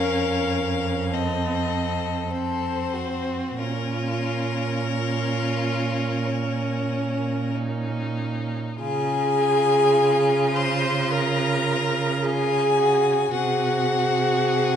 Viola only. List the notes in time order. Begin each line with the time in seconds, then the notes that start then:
Already playing: C#4
1.14 C4
2.31 C4
3.59 C#4
8.80 G#4
10.54 C5
11.12 A#4
12.22 G#4
13.32 F#4